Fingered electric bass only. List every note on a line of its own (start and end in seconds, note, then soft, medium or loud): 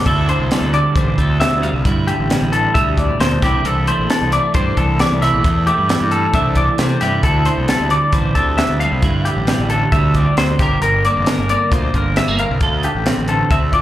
0.06 0.31 D2 medium
0.39 0.48 C2 medium
0.61 0.78 D2 medium
0.96 1.12 A1 medium
1.18 1.43 D2 medium
1.52 1.68 D2 medium
1.73 1.82 C2 medium
1.85 2.10 G2 medium
2.19 2.36 A1 medium
2.41 2.67 A1 medium
2.75 3.09 D2 medium
3.20 3.37 D2 medium
3.42 3.59 C2 medium
3.65 3.90 C2 medium
3.99 4.07 A#1 medium
4.21 4.38 C2 medium
4.55 4.72 G2 medium
4.77 5.02 C2 medium
5.11 5.28 C2 medium
5.33 5.42 A#1 medium
5.44 5.70 E2 medium
5.78 5.95 G2 medium
6.01 6.26 G2 medium
6.34 6.68 C2 medium
6.79 6.96 C3 medium
7.02 7.19 G2 medium
7.23 7.49 D2 medium
7.57 7.66 C2 medium
7.80 7.97 D2 medium
8.13 8.30 A1 medium
8.35 8.61 D2 medium
8.69 8.86 D2 medium
8.92 9.00 C2 medium
9.03 9.28 G2 medium
9.36 9.53 A1 medium
9.58 9.84 A1 medium
9.92 10.26 D2 medium
10.37 10.54 D2 medium
10.59 10.76 G1 medium
10.82 11.07 G1 medium
11.16 11.24 F1 medium
11.38 11.55 G1 medium
11.72 11.88 D2 medium
11.94 12.19 G1 medium
12.28 12.44 G1 medium
12.50 12.59 C2 medium
12.61 12.86 D2 medium
12.95 13.12 A1 medium
13.17 13.42 A1 medium
13.50 13.82 D2 medium